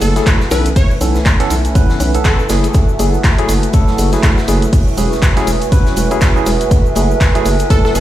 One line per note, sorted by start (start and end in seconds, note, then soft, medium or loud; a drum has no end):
0.00 0.20 F#1 medium
0.00 0.13 F#3 medium
0.00 0.13 A3 medium
0.00 0.13 E4 medium
0.00 0.50 E4 medium
0.00 0.50 F#4 medium
0.00 0.13 A4 medium
0.00 0.50 A4 medium
0.00 0.41 A4 medium
0.00 8.00 B4 medium
0.00 8.00 E5 medium
0.00 8.00 G#5 medium
0.00 closed hi-hat medium
0.00 open hi-hat loud
0.00 shaker medium
0.16 0.40 F#3 medium
0.16 0.40 A3 medium
0.16 0.40 E4 medium
0.16 0.41 G#4 medium
0.16 snare soft
0.16 closed hi-hat medium
0.16 shaker soft
0.26 kick loud
0.26 snare loud
0.26 clap loud
0.26 closed hi-hat medium
0.26 shaker medium
0.41 snare medium
0.41 shaker soft
0.51 0.70 B1 medium
0.51 0.68 E3 medium
0.51 2.48 A3 medium
0.51 0.68 B3 medium
0.51 2.48 C#4 medium
0.51 0.68 C#4 medium
0.51 6.67 E4 medium
0.51 0.68 A4 medium
0.51 0.68 B4 medium
0.51 2.48 B4 medium
0.51 closed hi-hat medium
0.51 open hi-hat medium
0.51 shaker medium
0.66 closed hi-hat medium
0.66 shaker soft
0.76 0.92 C#5 medium
0.76 kick loud
0.76 closed hi-hat medium
0.76 open hi-hat medium
0.76 shaker medium
0.91 shaker soft
1.01 1.19 B1 medium
1.01 1.17 E3 medium
1.01 1.18 B3 medium
1.01 1.18 C#4 medium
1.01 1.18 A4 medium
1.01 closed hi-hat medium
1.01 open hi-hat loud
1.01 shaker medium
1.15 snare soft
1.15 shaker soft
1.25 kick loud
1.25 snare loud
1.25 clap loud
1.25 closed hi-hat medium
1.25 shaker soft
1.40 1.54 E3 medium
1.40 1.54 B3 medium
1.40 1.54 C#4 medium
1.40 1.54 A4 loud
1.40 snare soft
1.40 closed hi-hat medium
1.40 shaker soft
1.50 1.69 B1 medium
1.50 closed hi-hat medium
1.50 open hi-hat medium
1.50 shaker medium
1.64 closed hi-hat soft
1.64 closed hi-hat medium
1.64 shaker soft
1.75 2.11 E3 medium
1.75 2.11 B3 medium
1.75 2.11 C#4 medium
1.75 2.11 B4 medium
1.75 kick loud
1.75 closed hi-hat medium
1.75 shaker medium
1.90 snare soft
1.90 shaker soft
2.00 2.18 B1 medium
2.00 closed hi-hat medium
2.00 open hi-hat loud
2.00 shaker medium
2.14 2.39 E3 medium
2.14 2.39 B3 medium
2.14 2.39 C#4 medium
2.14 2.39 A4 medium
2.14 closed hi-hat medium
2.14 shaker soft
2.24 2.55 A4 medium
2.24 kick loud
2.24 snare loud
2.24 clap loud
2.24 closed hi-hat medium
2.24 shaker medium
2.39 closed hi-hat soft
2.39 shaker soft
2.49 2.68 F#1 medium
2.49 2.66 F#3 medium
2.49 2.66 A3 medium
2.49 6.67 A3 medium
2.49 2.66 E4 medium
2.49 4.71 F#4 medium
2.49 2.67 G#4 medium
2.49 4.71 A4 medium
2.49 snare loud
2.49 closed hi-hat medium
2.49 open hi-hat medium
2.49 shaker medium
2.64 closed hi-hat medium
2.64 shaker soft
2.74 kick loud
2.74 closed hi-hat medium
2.74 shaker medium
2.89 shaker soft
2.99 3.18 F#1 medium
2.99 3.16 F#3 medium
2.99 3.16 A3 medium
2.99 3.16 E4 medium
2.99 3.16 G#4 medium
2.99 closed hi-hat medium
2.99 open hi-hat loud
2.99 shaker medium
3.14 shaker soft
3.24 kick loud
3.24 snare loud
3.24 clap loud
3.24 closed hi-hat medium
3.24 shaker soft
3.38 3.52 F#3 medium
3.38 3.52 A3 medium
3.38 3.52 E4 medium
3.38 3.52 G#4 loud
3.38 closed hi-hat medium
3.38 shaker soft
3.48 3.67 F#1 medium
3.48 closed hi-hat medium
3.48 open hi-hat medium
3.48 shaker loud
3.63 closed hi-hat soft
3.63 shaker soft
3.73 4.09 F#3 medium
3.73 4.09 A3 medium
3.73 4.09 E4 medium
3.73 4.10 A4 medium
3.73 kick loud
3.73 closed hi-hat medium
3.73 shaker medium
3.88 snare soft
3.88 shaker soft
3.98 4.17 F#1 medium
3.98 closed hi-hat medium
3.98 open hi-hat loud
3.98 shaker loud
4.12 4.37 F#3 medium
4.12 4.37 A3 medium
4.12 4.37 E4 medium
4.12 4.37 G#4 medium
4.12 snare soft
4.12 closed hi-hat soft
4.12 shaker soft
4.23 kick loud
4.23 snare loud
4.23 clap loud
4.23 closed hi-hat medium
4.23 shaker medium
4.38 snare medium
4.38 shaker soft
4.48 4.66 F#1 medium
4.48 4.65 F#3 medium
4.48 4.65 A3 medium
4.48 4.65 E4 medium
4.48 4.65 G#4 medium
4.48 closed hi-hat medium
4.48 open hi-hat medium
4.48 shaker medium
4.62 closed hi-hat medium
4.62 shaker soft
4.73 8.00 F#4 medium
4.73 6.69 C#5 medium
4.73 kick loud
4.73 closed hi-hat medium
4.73 open hi-hat medium
4.73 shaker medium
4.88 shaker soft
4.97 5.16 E1 loud
4.97 5.14 F#3 medium
4.97 5.14 C#4 medium
4.97 5.14 E4 medium
4.97 5.14 G#4 medium
4.97 closed hi-hat medium
4.97 open hi-hat loud
4.97 shaker medium
5.12 snare soft
5.12 shaker soft
5.22 kick loud
5.22 snare loud
5.22 clap loud
5.22 closed hi-hat medium
5.22 shaker medium
5.36 5.50 F#3 medium
5.36 5.50 C#4 medium
5.36 5.50 E4 medium
5.36 5.51 G#4 loud
5.36 snare soft
5.36 closed hi-hat soft
5.36 shaker soft
5.47 5.66 E1 medium
5.47 closed hi-hat medium
5.47 open hi-hat medium
5.47 shaker medium
5.61 closed hi-hat soft
5.61 shaker soft
5.72 6.08 F#3 medium
5.72 6.08 C#4 medium
5.72 6.08 E4 medium
5.72 6.08 B4 medium
5.72 kick loud
5.72 closed hi-hat medium
5.72 shaker medium
5.86 snare soft
5.86 shaker soft
5.96 6.15 E1 medium
5.96 closed hi-hat medium
5.96 open hi-hat loud
5.96 shaker medium
6.11 6.32 F#3 medium
6.11 6.32 C#4 medium
6.11 6.33 E4 medium
6.11 6.33 G#4 loud
6.11 closed hi-hat soft
6.11 shaker soft
6.21 kick loud
6.21 snare loud
6.21 clap loud
6.21 closed hi-hat medium
6.21 shaker medium
6.36 6.49 F#3 medium
6.36 6.49 C#4 medium
6.36 6.50 E4 medium
6.36 6.50 G#4 medium
6.36 closed hi-hat soft
6.36 shaker soft
6.46 6.65 E1 loud
6.46 closed hi-hat medium
6.46 open hi-hat medium
6.46 shaker loud
6.61 closed hi-hat medium
6.61 shaker soft
6.71 8.00 E4 medium
6.71 8.00 A4 medium
6.71 kick loud
6.71 closed hi-hat medium
6.71 shaker medium
6.86 shaker soft
6.95 7.14 F#1 medium
6.95 7.12 F#3 medium
6.95 7.13 A3 medium
6.95 7.13 E4 medium
6.95 7.13 G#4 medium
6.95 closed hi-hat medium
6.95 open hi-hat loud
6.95 shaker medium
7.11 shaker soft
7.21 kick loud
7.21 snare loud
7.21 clap loud
7.21 closed hi-hat medium
7.21 shaker medium
7.35 7.49 F#3 loud
7.35 7.49 A3 medium
7.35 7.49 E4 medium
7.35 7.49 G#4 loud
7.35 closed hi-hat medium
7.35 shaker soft
7.45 7.64 F#1 medium
7.45 closed hi-hat medium
7.45 open hi-hat medium
7.45 shaker medium
7.59 closed hi-hat soft
7.59 shaker soft
7.70 8.00 F#3 medium
7.70 8.00 A3 medium
7.70 8.00 E4 medium
7.70 7.80 A4 medium
7.70 8.00 A4 medium
7.70 kick loud
7.70 closed hi-hat medium
7.70 shaker medium
7.85 7.91 A4 medium
7.85 snare soft
7.85 shaker soft
7.95 8.00 F#1 medium
7.95 8.00 A4 loud
7.95 closed hi-hat medium
7.95 open hi-hat loud
7.95 shaker medium